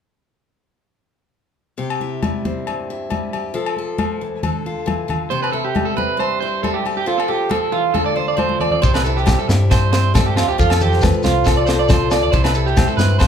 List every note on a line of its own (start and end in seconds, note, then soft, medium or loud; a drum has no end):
1.78 2.66 C3 medium
1.78 3.33 G4 medium
1.78 muted conga soft
1.90 low agogo medium
2.00 2.89 E4 medium
2.00 muted conga soft
2.23 3.09 G3 medium
2.23 high conga medium
2.23 low agogo medium
2.45 4.46 C4 soft
2.45 high conga medium
2.67 3.55 G2 soft
2.67 muted conga soft
2.67 low agogo medium
2.90 3.53 E4 medium
3.10 3.52 G3 medium
3.10 high conga medium
3.10 low agogo soft
3.33 3.55 G4 medium
3.33 muted conga soft
3.33 low agogo soft
3.54 3.97 F3 medium
3.54 3.77 A4 medium
3.54 muted conga soft
3.66 low agogo medium
3.77 4.41 A4 soft
3.77 muted conga soft
3.98 4.21 F3 medium
3.98 high conga medium
3.98 low agogo medium
4.21 4.43 E3 soft
4.43 4.85 D3 medium
4.43 5.29 A4 medium
4.43 muted conga soft
4.43 high conga medium
4.43 low conga medium
4.43 low agogo medium
4.66 5.29 F4 medium
4.86 5.08 E3 medium
4.86 high conga medium
4.86 low agogo medium
5.08 5.30 D3 medium
5.08 muted conga soft
5.08 low conga medium
5.08 low agogo medium
5.30 6.19 C3 medium
5.30 6.84 G4 medium
5.30 5.42 C5 medium
5.30 muted conga soft
5.42 5.52 B4 medium
5.42 low agogo medium
5.52 6.41 E4 medium
5.52 5.64 A4 medium
5.52 muted conga soft
5.64 5.86 G4 medium
5.75 6.63 G3 medium
5.75 high conga medium
5.75 low agogo medium
5.85 5.96 A4 medium
5.97 7.98 C4 soft
5.97 6.18 B4 medium
5.97 high conga medium
6.17 7.06 G2 medium
6.17 6.39 C5 medium
6.17 muted conga soft
6.17 low agogo medium
6.40 7.05 E4 medium
6.40 6.62 C5 medium
6.63 7.05 G3 medium
6.63 6.74 A4 medium
6.63 high conga medium
6.63 low agogo medium
6.74 6.84 G4 medium
6.85 7.07 G4 medium
6.85 muted conga soft
6.85 low agogo medium
6.97 7.07 G4 medium
7.06 7.48 F3 medium
7.06 7.19 F4 medium
7.06 7.27 A4 medium
7.06 muted conga soft
7.18 7.28 A4 medium
7.18 low agogo medium
7.28 7.50 G4 medium
7.28 7.92 A4 medium
7.28 muted conga soft
7.49 7.72 F3 medium
7.49 7.72 A4 medium
7.49 high conga medium
7.49 low agogo medium
7.72 7.94 E3 soft
7.72 7.94 F4 medium
7.94 8.80 D3 medium
7.94 8.05 A4 medium
7.94 8.81 A4 medium
7.94 muted conga soft
7.94 high conga medium
7.94 low conga medium
7.94 low agogo medium
8.06 8.16 D5 medium
8.16 8.80 F4 medium
8.16 8.28 C5 medium
8.28 8.37 D5 medium
8.37 8.82 F3 medium
8.37 8.59 C5 medium
8.37 high conga medium
8.37 low agogo medium
8.49 high conga soft
8.60 8.80 C4 medium
8.60 8.71 D5 medium
8.60 low conga soft
8.60 low agogo medium
8.71 8.82 D5 medium
8.71 low conga medium
8.82 9.35 C2 loud
8.82 9.70 C3 medium
8.82 9.92 C4 medium
8.82 8.94 C5 medium
8.82 kick medium
8.82 muted conga soft
8.82 shekere medium
8.94 9.04 B4 medium
8.94 snare medium
8.94 low agogo medium
8.94 shekere soft
9.04 9.49 E4 medium
9.04 9.16 A4 medium
9.04 muted conga soft
9.04 shekere medium
9.17 9.38 G4 medium
9.17 shekere soft
9.26 10.14 G3 medium
9.26 10.81 G4 medium
9.26 kick medium
9.26 snare medium
9.26 high conga medium
9.26 low agogo medium
9.26 shekere medium
9.39 9.49 A4 medium
9.39 shekere soft
9.48 10.49 G2 loud
9.48 10.57 E4 soft
9.48 muted clean electric guitar stroke medium
9.48 snare medium
9.48 high conga medium
9.48 shekere medium
9.71 10.58 G2 medium
9.71 9.91 C5 medium
9.71 kick medium
9.71 snare medium
9.71 muted conga soft
9.71 low agogo medium
9.71 shekere medium
9.92 11.02 C4 medium
9.92 10.13 C5 medium
9.92 snare medium
9.92 shekere medium
10.14 10.58 G3 medium
10.14 10.26 A4 medium
10.14 kick medium
10.14 snare medium
10.14 muted conga soft
10.14 high conga medium
10.14 low agogo medium
10.14 shekere medium
10.26 10.36 G4 medium
10.36 10.48 F4 medium
10.36 snare medium
10.36 low agogo medium
10.36 shekere medium
10.48 10.57 C2 medium
10.48 10.58 G4 medium
10.48 shekere soft
10.58 11.10 F2 loud
10.58 12.33 F3 medium
10.58 10.70 F4 medium
10.58 11.67 A4 medium
10.58 kick medium
10.58 muted conga soft
10.58 shekere medium
10.70 10.80 A4 medium
10.70 snare medium
10.70 low agogo medium
10.70 shekere soft
10.81 11.02 G4 medium
10.81 11.02 C5 medium
10.81 muted conga soft
10.81 low conga medium
10.81 shekere medium
10.92 snare soft
10.92 shekere soft
11.01 11.89 F4 medium
11.01 11.24 B4 medium
11.01 muted clean electric guitar stroke medium
11.01 kick medium
11.01 snare medium
11.01 high conga medium
11.01 low conga medium
11.01 low agogo medium
11.01 shekere medium
11.13 shekere soft
11.23 12.23 C2 medium
11.23 11.45 F4 medium
11.23 12.77 C5 medium
11.23 snare medium
11.23 high conga medium
11.23 shekere medium
11.45 11.57 A4 medium
11.45 muted steel-string acoustic guitar stroke medium
11.45 kick medium
11.45 snare medium
11.45 muted conga soft
11.45 low agogo medium
11.45 shekere medium
11.57 11.66 D5 medium
11.67 12.31 A4 medium
11.67 11.78 C5 medium
11.67 snare medium
11.67 shekere medium
11.79 11.89 D5 medium
11.89 12.31 F4 medium
11.89 12.10 C5 medium
11.89 kick medium
11.89 snare medium
11.89 muted conga soft
11.89 high conga medium
11.89 low agogo medium
11.89 shekere loud
12.11 12.22 D5 medium
12.11 snare medium
12.11 low agogo medium
12.11 shekere medium
12.23 12.31 D2 medium
12.23 12.32 D5 medium
12.23 shekere soft
12.32 12.85 C2 medium
12.32 13.20 C3 medium
12.32 13.27 E4 medium
12.32 12.44 C5 medium
12.32 kick medium
12.32 muted conga soft
12.32 shekere medium
12.44 12.54 B4 medium
12.44 snare medium
12.44 low agogo medium
12.44 shekere soft
12.54 12.99 G4 medium
12.54 12.66 A4 medium
12.54 shekere medium
12.66 12.87 G4 medium
12.66 shekere soft
12.77 13.27 C4 medium
12.77 13.27 C5 medium
12.77 kick medium
12.77 snare medium
12.77 high conga medium
12.77 low agogo medium
12.77 shekere medium
12.88 12.97 A4 medium
12.88 shekere soft
12.97 13.27 G2 medium
12.97 13.27 G4 medium
12.97 13.19 B4 medium
12.97 snare medium
12.97 high conga medium
12.97 shekere medium
13.19 13.27 G2 medium
13.19 13.27 C5 medium
13.19 kick medium
13.19 snare medium
13.19 muted conga soft
13.19 low agogo medium
13.19 shekere medium